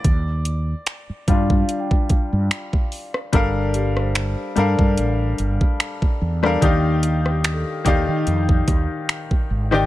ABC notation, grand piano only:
X:1
M:4/4
L:1/16
Q:"Swing 16ths" 1/4=73
K:Gm
V:1 name="Grand piano"
d6 [G,DF]2 z8 | [G,DABf]4 z2 [G,DABf]6 z3 [G,DABf] | [E,EGdf]4 z2 [E,EGdf]6 z3 [E,EGdg] |]